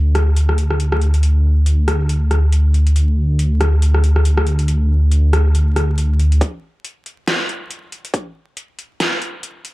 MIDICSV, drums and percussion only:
0, 0, Header, 1, 2, 480
1, 0, Start_track
1, 0, Tempo, 431655
1, 1370, Time_signature, 4, 2, 24, 8
1, 10829, End_track
2, 0, Start_track
2, 0, Title_t, "Drums"
2, 167, Note_on_c, 9, 37, 74
2, 167, Note_on_c, 9, 42, 53
2, 278, Note_off_c, 9, 37, 0
2, 278, Note_off_c, 9, 42, 0
2, 406, Note_on_c, 9, 42, 77
2, 517, Note_off_c, 9, 42, 0
2, 545, Note_on_c, 9, 37, 56
2, 645, Note_on_c, 9, 42, 53
2, 656, Note_off_c, 9, 37, 0
2, 756, Note_off_c, 9, 42, 0
2, 784, Note_on_c, 9, 37, 52
2, 888, Note_on_c, 9, 42, 75
2, 896, Note_off_c, 9, 37, 0
2, 999, Note_off_c, 9, 42, 0
2, 1026, Note_on_c, 9, 37, 68
2, 1128, Note_on_c, 9, 42, 51
2, 1137, Note_off_c, 9, 37, 0
2, 1240, Note_off_c, 9, 42, 0
2, 1266, Note_on_c, 9, 42, 52
2, 1367, Note_off_c, 9, 42, 0
2, 1367, Note_on_c, 9, 42, 80
2, 1478, Note_off_c, 9, 42, 0
2, 1846, Note_on_c, 9, 42, 78
2, 1958, Note_off_c, 9, 42, 0
2, 2088, Note_on_c, 9, 37, 74
2, 2088, Note_on_c, 9, 42, 53
2, 2199, Note_off_c, 9, 37, 0
2, 2199, Note_off_c, 9, 42, 0
2, 2328, Note_on_c, 9, 42, 77
2, 2439, Note_off_c, 9, 42, 0
2, 2568, Note_on_c, 9, 37, 55
2, 2568, Note_on_c, 9, 42, 54
2, 2679, Note_off_c, 9, 37, 0
2, 2679, Note_off_c, 9, 42, 0
2, 2808, Note_on_c, 9, 42, 77
2, 2919, Note_off_c, 9, 42, 0
2, 3050, Note_on_c, 9, 42, 53
2, 3161, Note_off_c, 9, 42, 0
2, 3187, Note_on_c, 9, 42, 54
2, 3290, Note_off_c, 9, 42, 0
2, 3290, Note_on_c, 9, 42, 79
2, 3401, Note_off_c, 9, 42, 0
2, 3770, Note_on_c, 9, 42, 79
2, 3881, Note_off_c, 9, 42, 0
2, 4009, Note_on_c, 9, 37, 75
2, 4009, Note_on_c, 9, 42, 53
2, 4121, Note_off_c, 9, 37, 0
2, 4121, Note_off_c, 9, 42, 0
2, 4250, Note_on_c, 9, 42, 78
2, 4361, Note_off_c, 9, 42, 0
2, 4387, Note_on_c, 9, 37, 59
2, 4489, Note_on_c, 9, 42, 52
2, 4498, Note_off_c, 9, 37, 0
2, 4600, Note_off_c, 9, 42, 0
2, 4627, Note_on_c, 9, 37, 56
2, 4729, Note_on_c, 9, 42, 77
2, 4738, Note_off_c, 9, 37, 0
2, 4840, Note_off_c, 9, 42, 0
2, 4865, Note_on_c, 9, 37, 75
2, 4967, Note_on_c, 9, 42, 52
2, 4976, Note_off_c, 9, 37, 0
2, 5078, Note_off_c, 9, 42, 0
2, 5103, Note_on_c, 9, 42, 52
2, 5205, Note_off_c, 9, 42, 0
2, 5205, Note_on_c, 9, 42, 77
2, 5317, Note_off_c, 9, 42, 0
2, 5687, Note_on_c, 9, 42, 74
2, 5799, Note_off_c, 9, 42, 0
2, 5929, Note_on_c, 9, 37, 80
2, 5929, Note_on_c, 9, 42, 52
2, 6040, Note_off_c, 9, 37, 0
2, 6040, Note_off_c, 9, 42, 0
2, 6169, Note_on_c, 9, 42, 72
2, 6280, Note_off_c, 9, 42, 0
2, 6408, Note_on_c, 9, 37, 63
2, 6408, Note_on_c, 9, 42, 51
2, 6520, Note_off_c, 9, 37, 0
2, 6520, Note_off_c, 9, 42, 0
2, 6648, Note_on_c, 9, 42, 75
2, 6760, Note_off_c, 9, 42, 0
2, 6889, Note_on_c, 9, 42, 50
2, 7000, Note_off_c, 9, 42, 0
2, 7028, Note_on_c, 9, 42, 51
2, 7130, Note_on_c, 9, 36, 115
2, 7131, Note_off_c, 9, 42, 0
2, 7131, Note_on_c, 9, 42, 82
2, 7241, Note_off_c, 9, 36, 0
2, 7243, Note_off_c, 9, 42, 0
2, 7612, Note_on_c, 9, 42, 81
2, 7723, Note_off_c, 9, 42, 0
2, 7851, Note_on_c, 9, 42, 56
2, 7962, Note_off_c, 9, 42, 0
2, 8090, Note_on_c, 9, 38, 115
2, 8090, Note_on_c, 9, 42, 80
2, 8201, Note_off_c, 9, 38, 0
2, 8201, Note_off_c, 9, 42, 0
2, 8330, Note_on_c, 9, 42, 54
2, 8441, Note_off_c, 9, 42, 0
2, 8569, Note_on_c, 9, 42, 77
2, 8680, Note_off_c, 9, 42, 0
2, 8811, Note_on_c, 9, 42, 53
2, 8922, Note_off_c, 9, 42, 0
2, 8948, Note_on_c, 9, 42, 54
2, 9049, Note_on_c, 9, 36, 115
2, 9050, Note_off_c, 9, 42, 0
2, 9050, Note_on_c, 9, 42, 81
2, 9160, Note_off_c, 9, 36, 0
2, 9161, Note_off_c, 9, 42, 0
2, 9528, Note_on_c, 9, 42, 80
2, 9639, Note_off_c, 9, 42, 0
2, 9770, Note_on_c, 9, 42, 54
2, 9881, Note_off_c, 9, 42, 0
2, 10009, Note_on_c, 9, 38, 117
2, 10009, Note_on_c, 9, 42, 80
2, 10120, Note_off_c, 9, 38, 0
2, 10120, Note_off_c, 9, 42, 0
2, 10249, Note_on_c, 9, 42, 55
2, 10360, Note_off_c, 9, 42, 0
2, 10488, Note_on_c, 9, 42, 80
2, 10599, Note_off_c, 9, 42, 0
2, 10728, Note_on_c, 9, 42, 54
2, 10829, Note_off_c, 9, 42, 0
2, 10829, End_track
0, 0, End_of_file